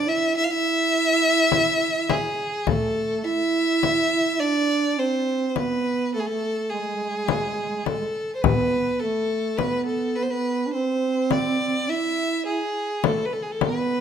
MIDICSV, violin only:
0, 0, Header, 1, 2, 480
1, 0, Start_track
1, 0, Tempo, 1151631
1, 1114, Time_signature, 10, 3, 24, 8
1, 5838, End_track
2, 0, Start_track
2, 0, Title_t, "Violin"
2, 0, Program_c, 0, 40
2, 34, Note_on_c, 0, 76, 88
2, 150, Note_off_c, 0, 76, 0
2, 152, Note_on_c, 0, 76, 98
2, 183, Note_on_c, 0, 77, 82
2, 189, Note_off_c, 0, 76, 0
2, 211, Note_on_c, 0, 76, 115
2, 217, Note_off_c, 0, 77, 0
2, 873, Note_on_c, 0, 68, 87
2, 880, Note_off_c, 0, 76, 0
2, 1115, Note_on_c, 0, 69, 92
2, 1121, Note_off_c, 0, 68, 0
2, 1352, Note_on_c, 0, 76, 104
2, 1359, Note_off_c, 0, 69, 0
2, 1832, Note_on_c, 0, 74, 99
2, 1838, Note_off_c, 0, 76, 0
2, 2079, Note_on_c, 0, 72, 84
2, 2085, Note_off_c, 0, 74, 0
2, 2289, Note_off_c, 0, 72, 0
2, 2289, Note_on_c, 0, 72, 62
2, 2318, Note_on_c, 0, 71, 82
2, 2324, Note_off_c, 0, 72, 0
2, 2556, Note_off_c, 0, 71, 0
2, 2559, Note_on_c, 0, 69, 87
2, 2584, Note_on_c, 0, 68, 74
2, 2590, Note_off_c, 0, 69, 0
2, 2611, Note_on_c, 0, 69, 89
2, 2618, Note_off_c, 0, 68, 0
2, 2792, Note_on_c, 0, 68, 83
2, 2798, Note_off_c, 0, 69, 0
2, 3271, Note_on_c, 0, 69, 80
2, 3277, Note_off_c, 0, 68, 0
2, 3479, Note_off_c, 0, 69, 0
2, 3482, Note_on_c, 0, 72, 64
2, 3510, Note_on_c, 0, 71, 91
2, 3516, Note_off_c, 0, 72, 0
2, 3749, Note_on_c, 0, 69, 87
2, 3756, Note_off_c, 0, 71, 0
2, 3991, Note_on_c, 0, 71, 80
2, 3998, Note_off_c, 0, 69, 0
2, 4107, Note_off_c, 0, 71, 0
2, 4110, Note_on_c, 0, 69, 75
2, 4234, Note_on_c, 0, 71, 84
2, 4240, Note_off_c, 0, 69, 0
2, 4263, Note_on_c, 0, 72, 64
2, 4269, Note_off_c, 0, 71, 0
2, 4294, Note_on_c, 0, 71, 81
2, 4300, Note_off_c, 0, 72, 0
2, 4471, Note_off_c, 0, 71, 0
2, 4473, Note_on_c, 0, 72, 81
2, 4717, Note_on_c, 0, 74, 81
2, 4724, Note_off_c, 0, 72, 0
2, 4957, Note_on_c, 0, 76, 91
2, 4963, Note_off_c, 0, 74, 0
2, 5192, Note_off_c, 0, 76, 0
2, 5194, Note_on_c, 0, 68, 78
2, 5436, Note_on_c, 0, 69, 83
2, 5443, Note_off_c, 0, 68, 0
2, 5525, Note_on_c, 0, 71, 70
2, 5531, Note_off_c, 0, 69, 0
2, 5558, Note_on_c, 0, 69, 69
2, 5564, Note_off_c, 0, 71, 0
2, 5594, Note_on_c, 0, 68, 62
2, 5601, Note_off_c, 0, 69, 0
2, 5632, Note_on_c, 0, 69, 67
2, 5638, Note_off_c, 0, 68, 0
2, 5674, Note_on_c, 0, 71, 89
2, 5681, Note_off_c, 0, 69, 0
2, 5838, Note_off_c, 0, 71, 0
2, 5838, End_track
0, 0, End_of_file